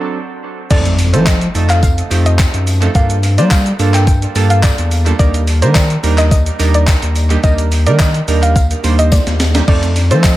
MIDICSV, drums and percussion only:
0, 0, Header, 1, 2, 480
1, 0, Start_track
1, 0, Tempo, 560748
1, 605, Time_signature, 4, 2, 24, 8
1, 8875, End_track
2, 0, Start_track
2, 0, Title_t, "Drums"
2, 604, Note_on_c, 9, 36, 120
2, 604, Note_on_c, 9, 49, 103
2, 604, Note_on_c, 9, 82, 66
2, 690, Note_off_c, 9, 36, 0
2, 690, Note_off_c, 9, 49, 0
2, 690, Note_off_c, 9, 82, 0
2, 732, Note_on_c, 9, 42, 58
2, 732, Note_on_c, 9, 82, 54
2, 817, Note_off_c, 9, 42, 0
2, 817, Note_off_c, 9, 82, 0
2, 844, Note_on_c, 9, 46, 84
2, 844, Note_on_c, 9, 54, 35
2, 844, Note_on_c, 9, 82, 60
2, 929, Note_off_c, 9, 46, 0
2, 929, Note_off_c, 9, 54, 0
2, 929, Note_off_c, 9, 82, 0
2, 973, Note_on_c, 9, 42, 75
2, 973, Note_on_c, 9, 82, 76
2, 1058, Note_off_c, 9, 42, 0
2, 1058, Note_off_c, 9, 82, 0
2, 1082, Note_on_c, 9, 54, 99
2, 1084, Note_on_c, 9, 39, 122
2, 1085, Note_on_c, 9, 36, 117
2, 1087, Note_on_c, 9, 82, 80
2, 1168, Note_off_c, 9, 54, 0
2, 1170, Note_off_c, 9, 36, 0
2, 1170, Note_off_c, 9, 39, 0
2, 1173, Note_off_c, 9, 82, 0
2, 1211, Note_on_c, 9, 42, 49
2, 1211, Note_on_c, 9, 82, 50
2, 1296, Note_off_c, 9, 42, 0
2, 1296, Note_off_c, 9, 82, 0
2, 1326, Note_on_c, 9, 54, 52
2, 1328, Note_on_c, 9, 46, 80
2, 1328, Note_on_c, 9, 82, 59
2, 1411, Note_off_c, 9, 54, 0
2, 1413, Note_off_c, 9, 46, 0
2, 1413, Note_off_c, 9, 82, 0
2, 1453, Note_on_c, 9, 39, 64
2, 1454, Note_on_c, 9, 42, 74
2, 1454, Note_on_c, 9, 82, 73
2, 1539, Note_off_c, 9, 39, 0
2, 1540, Note_off_c, 9, 42, 0
2, 1540, Note_off_c, 9, 82, 0
2, 1563, Note_on_c, 9, 54, 50
2, 1565, Note_on_c, 9, 36, 111
2, 1568, Note_on_c, 9, 82, 83
2, 1649, Note_off_c, 9, 54, 0
2, 1650, Note_off_c, 9, 36, 0
2, 1653, Note_off_c, 9, 82, 0
2, 1695, Note_on_c, 9, 42, 54
2, 1695, Note_on_c, 9, 82, 54
2, 1781, Note_off_c, 9, 42, 0
2, 1781, Note_off_c, 9, 82, 0
2, 1805, Note_on_c, 9, 54, 58
2, 1808, Note_on_c, 9, 46, 79
2, 1808, Note_on_c, 9, 82, 58
2, 1891, Note_off_c, 9, 54, 0
2, 1893, Note_off_c, 9, 46, 0
2, 1893, Note_off_c, 9, 82, 0
2, 1935, Note_on_c, 9, 42, 74
2, 1935, Note_on_c, 9, 82, 72
2, 2020, Note_off_c, 9, 42, 0
2, 2020, Note_off_c, 9, 82, 0
2, 2043, Note_on_c, 9, 54, 95
2, 2047, Note_on_c, 9, 39, 117
2, 2048, Note_on_c, 9, 36, 119
2, 2049, Note_on_c, 9, 82, 94
2, 2129, Note_off_c, 9, 54, 0
2, 2132, Note_off_c, 9, 39, 0
2, 2134, Note_off_c, 9, 36, 0
2, 2134, Note_off_c, 9, 82, 0
2, 2174, Note_on_c, 9, 42, 53
2, 2174, Note_on_c, 9, 82, 53
2, 2260, Note_off_c, 9, 42, 0
2, 2260, Note_off_c, 9, 82, 0
2, 2286, Note_on_c, 9, 46, 88
2, 2286, Note_on_c, 9, 82, 62
2, 2288, Note_on_c, 9, 54, 51
2, 2372, Note_off_c, 9, 46, 0
2, 2372, Note_off_c, 9, 82, 0
2, 2374, Note_off_c, 9, 54, 0
2, 2413, Note_on_c, 9, 42, 64
2, 2413, Note_on_c, 9, 82, 65
2, 2498, Note_off_c, 9, 42, 0
2, 2498, Note_off_c, 9, 82, 0
2, 2524, Note_on_c, 9, 54, 37
2, 2525, Note_on_c, 9, 36, 116
2, 2525, Note_on_c, 9, 82, 66
2, 2609, Note_off_c, 9, 54, 0
2, 2611, Note_off_c, 9, 36, 0
2, 2611, Note_off_c, 9, 82, 0
2, 2652, Note_on_c, 9, 42, 57
2, 2652, Note_on_c, 9, 82, 57
2, 2738, Note_off_c, 9, 42, 0
2, 2738, Note_off_c, 9, 82, 0
2, 2766, Note_on_c, 9, 54, 35
2, 2767, Note_on_c, 9, 46, 84
2, 2767, Note_on_c, 9, 82, 60
2, 2851, Note_off_c, 9, 54, 0
2, 2852, Note_off_c, 9, 46, 0
2, 2852, Note_off_c, 9, 82, 0
2, 2894, Note_on_c, 9, 42, 78
2, 2894, Note_on_c, 9, 82, 77
2, 2980, Note_off_c, 9, 42, 0
2, 2980, Note_off_c, 9, 82, 0
2, 3004, Note_on_c, 9, 54, 99
2, 3006, Note_on_c, 9, 36, 127
2, 3006, Note_on_c, 9, 39, 127
2, 3008, Note_on_c, 9, 82, 82
2, 3089, Note_off_c, 9, 54, 0
2, 3091, Note_off_c, 9, 36, 0
2, 3091, Note_off_c, 9, 39, 0
2, 3094, Note_off_c, 9, 82, 0
2, 3133, Note_on_c, 9, 42, 46
2, 3133, Note_on_c, 9, 82, 49
2, 3219, Note_off_c, 9, 42, 0
2, 3219, Note_off_c, 9, 82, 0
2, 3245, Note_on_c, 9, 54, 52
2, 3249, Note_on_c, 9, 46, 82
2, 3249, Note_on_c, 9, 82, 59
2, 3330, Note_off_c, 9, 54, 0
2, 3334, Note_off_c, 9, 46, 0
2, 3334, Note_off_c, 9, 82, 0
2, 3374, Note_on_c, 9, 39, 69
2, 3375, Note_on_c, 9, 42, 74
2, 3375, Note_on_c, 9, 82, 74
2, 3460, Note_off_c, 9, 39, 0
2, 3460, Note_off_c, 9, 42, 0
2, 3460, Note_off_c, 9, 82, 0
2, 3484, Note_on_c, 9, 54, 49
2, 3485, Note_on_c, 9, 36, 115
2, 3488, Note_on_c, 9, 82, 83
2, 3570, Note_off_c, 9, 54, 0
2, 3571, Note_off_c, 9, 36, 0
2, 3574, Note_off_c, 9, 82, 0
2, 3615, Note_on_c, 9, 42, 54
2, 3615, Note_on_c, 9, 82, 57
2, 3701, Note_off_c, 9, 42, 0
2, 3701, Note_off_c, 9, 82, 0
2, 3726, Note_on_c, 9, 54, 59
2, 3728, Note_on_c, 9, 46, 82
2, 3728, Note_on_c, 9, 82, 58
2, 3811, Note_off_c, 9, 54, 0
2, 3814, Note_off_c, 9, 46, 0
2, 3814, Note_off_c, 9, 82, 0
2, 3854, Note_on_c, 9, 42, 74
2, 3854, Note_on_c, 9, 82, 74
2, 3940, Note_off_c, 9, 42, 0
2, 3940, Note_off_c, 9, 82, 0
2, 3964, Note_on_c, 9, 54, 95
2, 3967, Note_on_c, 9, 39, 115
2, 3968, Note_on_c, 9, 36, 116
2, 3969, Note_on_c, 9, 82, 92
2, 4050, Note_off_c, 9, 54, 0
2, 4053, Note_off_c, 9, 39, 0
2, 4054, Note_off_c, 9, 36, 0
2, 4055, Note_off_c, 9, 82, 0
2, 4095, Note_on_c, 9, 42, 56
2, 4095, Note_on_c, 9, 82, 55
2, 4180, Note_off_c, 9, 42, 0
2, 4180, Note_off_c, 9, 82, 0
2, 4206, Note_on_c, 9, 46, 81
2, 4206, Note_on_c, 9, 82, 61
2, 4208, Note_on_c, 9, 54, 50
2, 4291, Note_off_c, 9, 46, 0
2, 4291, Note_off_c, 9, 82, 0
2, 4294, Note_off_c, 9, 54, 0
2, 4333, Note_on_c, 9, 42, 62
2, 4333, Note_on_c, 9, 82, 61
2, 4418, Note_off_c, 9, 42, 0
2, 4418, Note_off_c, 9, 82, 0
2, 4444, Note_on_c, 9, 54, 35
2, 4446, Note_on_c, 9, 36, 112
2, 4447, Note_on_c, 9, 82, 66
2, 4529, Note_off_c, 9, 54, 0
2, 4532, Note_off_c, 9, 36, 0
2, 4532, Note_off_c, 9, 82, 0
2, 4573, Note_on_c, 9, 42, 57
2, 4573, Note_on_c, 9, 82, 56
2, 4659, Note_off_c, 9, 42, 0
2, 4659, Note_off_c, 9, 82, 0
2, 4686, Note_on_c, 9, 46, 84
2, 4686, Note_on_c, 9, 54, 37
2, 4686, Note_on_c, 9, 82, 59
2, 4771, Note_off_c, 9, 54, 0
2, 4772, Note_off_c, 9, 46, 0
2, 4772, Note_off_c, 9, 82, 0
2, 4813, Note_on_c, 9, 42, 80
2, 4813, Note_on_c, 9, 82, 74
2, 4899, Note_off_c, 9, 42, 0
2, 4899, Note_off_c, 9, 82, 0
2, 4923, Note_on_c, 9, 54, 101
2, 4924, Note_on_c, 9, 39, 121
2, 4925, Note_on_c, 9, 36, 116
2, 4927, Note_on_c, 9, 82, 80
2, 5009, Note_off_c, 9, 54, 0
2, 5010, Note_off_c, 9, 39, 0
2, 5011, Note_off_c, 9, 36, 0
2, 5013, Note_off_c, 9, 82, 0
2, 5052, Note_on_c, 9, 42, 50
2, 5052, Note_on_c, 9, 82, 47
2, 5138, Note_off_c, 9, 42, 0
2, 5138, Note_off_c, 9, 82, 0
2, 5166, Note_on_c, 9, 54, 51
2, 5167, Note_on_c, 9, 46, 80
2, 5167, Note_on_c, 9, 82, 62
2, 5251, Note_off_c, 9, 54, 0
2, 5253, Note_off_c, 9, 46, 0
2, 5253, Note_off_c, 9, 82, 0
2, 5292, Note_on_c, 9, 39, 68
2, 5293, Note_on_c, 9, 42, 75
2, 5293, Note_on_c, 9, 82, 76
2, 5378, Note_off_c, 9, 39, 0
2, 5378, Note_off_c, 9, 42, 0
2, 5378, Note_off_c, 9, 82, 0
2, 5403, Note_on_c, 9, 54, 51
2, 5405, Note_on_c, 9, 36, 113
2, 5406, Note_on_c, 9, 82, 85
2, 5489, Note_off_c, 9, 54, 0
2, 5490, Note_off_c, 9, 36, 0
2, 5492, Note_off_c, 9, 82, 0
2, 5533, Note_on_c, 9, 42, 55
2, 5533, Note_on_c, 9, 82, 55
2, 5618, Note_off_c, 9, 42, 0
2, 5618, Note_off_c, 9, 82, 0
2, 5646, Note_on_c, 9, 46, 77
2, 5646, Note_on_c, 9, 54, 61
2, 5646, Note_on_c, 9, 82, 59
2, 5731, Note_off_c, 9, 46, 0
2, 5731, Note_off_c, 9, 82, 0
2, 5732, Note_off_c, 9, 54, 0
2, 5773, Note_on_c, 9, 42, 76
2, 5773, Note_on_c, 9, 82, 74
2, 5858, Note_off_c, 9, 42, 0
2, 5858, Note_off_c, 9, 82, 0
2, 5885, Note_on_c, 9, 39, 113
2, 5885, Note_on_c, 9, 54, 95
2, 5887, Note_on_c, 9, 82, 94
2, 5888, Note_on_c, 9, 36, 117
2, 5970, Note_off_c, 9, 54, 0
2, 5971, Note_off_c, 9, 39, 0
2, 5973, Note_off_c, 9, 36, 0
2, 5973, Note_off_c, 9, 82, 0
2, 6013, Note_on_c, 9, 42, 55
2, 6013, Note_on_c, 9, 82, 55
2, 6099, Note_off_c, 9, 42, 0
2, 6099, Note_off_c, 9, 82, 0
2, 6125, Note_on_c, 9, 46, 83
2, 6125, Note_on_c, 9, 82, 58
2, 6129, Note_on_c, 9, 54, 53
2, 6211, Note_off_c, 9, 46, 0
2, 6211, Note_off_c, 9, 82, 0
2, 6215, Note_off_c, 9, 54, 0
2, 6252, Note_on_c, 9, 42, 60
2, 6252, Note_on_c, 9, 82, 61
2, 6337, Note_off_c, 9, 42, 0
2, 6337, Note_off_c, 9, 82, 0
2, 6365, Note_on_c, 9, 36, 116
2, 6365, Note_on_c, 9, 54, 36
2, 6365, Note_on_c, 9, 82, 65
2, 6450, Note_off_c, 9, 82, 0
2, 6451, Note_off_c, 9, 36, 0
2, 6451, Note_off_c, 9, 54, 0
2, 6492, Note_on_c, 9, 42, 59
2, 6492, Note_on_c, 9, 82, 58
2, 6578, Note_off_c, 9, 42, 0
2, 6578, Note_off_c, 9, 82, 0
2, 6606, Note_on_c, 9, 46, 81
2, 6606, Note_on_c, 9, 54, 37
2, 6606, Note_on_c, 9, 82, 62
2, 6691, Note_off_c, 9, 46, 0
2, 6691, Note_off_c, 9, 54, 0
2, 6691, Note_off_c, 9, 82, 0
2, 6733, Note_on_c, 9, 42, 76
2, 6733, Note_on_c, 9, 82, 77
2, 6818, Note_off_c, 9, 42, 0
2, 6818, Note_off_c, 9, 82, 0
2, 6843, Note_on_c, 9, 54, 98
2, 6845, Note_on_c, 9, 36, 118
2, 6845, Note_on_c, 9, 39, 126
2, 6848, Note_on_c, 9, 82, 80
2, 6929, Note_off_c, 9, 54, 0
2, 6931, Note_off_c, 9, 36, 0
2, 6931, Note_off_c, 9, 39, 0
2, 6934, Note_off_c, 9, 82, 0
2, 6972, Note_on_c, 9, 42, 49
2, 6972, Note_on_c, 9, 82, 50
2, 7057, Note_off_c, 9, 42, 0
2, 7057, Note_off_c, 9, 82, 0
2, 7087, Note_on_c, 9, 46, 87
2, 7087, Note_on_c, 9, 54, 52
2, 7087, Note_on_c, 9, 82, 59
2, 7172, Note_off_c, 9, 54, 0
2, 7173, Note_off_c, 9, 46, 0
2, 7173, Note_off_c, 9, 82, 0
2, 7214, Note_on_c, 9, 42, 76
2, 7214, Note_on_c, 9, 82, 72
2, 7299, Note_off_c, 9, 42, 0
2, 7299, Note_off_c, 9, 82, 0
2, 7324, Note_on_c, 9, 54, 52
2, 7325, Note_on_c, 9, 36, 115
2, 7328, Note_on_c, 9, 82, 82
2, 7410, Note_off_c, 9, 54, 0
2, 7411, Note_off_c, 9, 36, 0
2, 7413, Note_off_c, 9, 82, 0
2, 7454, Note_on_c, 9, 42, 55
2, 7454, Note_on_c, 9, 82, 54
2, 7539, Note_off_c, 9, 42, 0
2, 7539, Note_off_c, 9, 82, 0
2, 7567, Note_on_c, 9, 46, 80
2, 7567, Note_on_c, 9, 54, 59
2, 7567, Note_on_c, 9, 82, 57
2, 7652, Note_off_c, 9, 46, 0
2, 7652, Note_off_c, 9, 82, 0
2, 7653, Note_off_c, 9, 54, 0
2, 7694, Note_on_c, 9, 42, 77
2, 7694, Note_on_c, 9, 82, 78
2, 7780, Note_off_c, 9, 42, 0
2, 7780, Note_off_c, 9, 82, 0
2, 7804, Note_on_c, 9, 54, 93
2, 7806, Note_on_c, 9, 38, 67
2, 7808, Note_on_c, 9, 36, 118
2, 7809, Note_on_c, 9, 82, 92
2, 7890, Note_off_c, 9, 54, 0
2, 7892, Note_off_c, 9, 38, 0
2, 7894, Note_off_c, 9, 36, 0
2, 7894, Note_off_c, 9, 82, 0
2, 7934, Note_on_c, 9, 38, 66
2, 7934, Note_on_c, 9, 42, 55
2, 7934, Note_on_c, 9, 82, 56
2, 8019, Note_off_c, 9, 38, 0
2, 8020, Note_off_c, 9, 42, 0
2, 8020, Note_off_c, 9, 82, 0
2, 8045, Note_on_c, 9, 38, 100
2, 8045, Note_on_c, 9, 46, 85
2, 8045, Note_on_c, 9, 82, 61
2, 8048, Note_on_c, 9, 54, 53
2, 8131, Note_off_c, 9, 38, 0
2, 8131, Note_off_c, 9, 46, 0
2, 8131, Note_off_c, 9, 82, 0
2, 8134, Note_off_c, 9, 54, 0
2, 8172, Note_on_c, 9, 42, 65
2, 8172, Note_on_c, 9, 82, 61
2, 8173, Note_on_c, 9, 38, 98
2, 8258, Note_off_c, 9, 42, 0
2, 8258, Note_off_c, 9, 82, 0
2, 8259, Note_off_c, 9, 38, 0
2, 8285, Note_on_c, 9, 36, 118
2, 8285, Note_on_c, 9, 49, 85
2, 8370, Note_off_c, 9, 49, 0
2, 8371, Note_off_c, 9, 36, 0
2, 8412, Note_on_c, 9, 42, 57
2, 8412, Note_on_c, 9, 82, 56
2, 8497, Note_off_c, 9, 42, 0
2, 8497, Note_off_c, 9, 82, 0
2, 8525, Note_on_c, 9, 46, 83
2, 8525, Note_on_c, 9, 82, 58
2, 8526, Note_on_c, 9, 54, 35
2, 8610, Note_off_c, 9, 46, 0
2, 8610, Note_off_c, 9, 82, 0
2, 8611, Note_off_c, 9, 54, 0
2, 8653, Note_on_c, 9, 42, 73
2, 8653, Note_on_c, 9, 82, 77
2, 8739, Note_off_c, 9, 42, 0
2, 8739, Note_off_c, 9, 82, 0
2, 8764, Note_on_c, 9, 54, 99
2, 8765, Note_on_c, 9, 36, 122
2, 8765, Note_on_c, 9, 39, 126
2, 8768, Note_on_c, 9, 82, 80
2, 8850, Note_off_c, 9, 54, 0
2, 8851, Note_off_c, 9, 36, 0
2, 8851, Note_off_c, 9, 39, 0
2, 8853, Note_off_c, 9, 82, 0
2, 8875, End_track
0, 0, End_of_file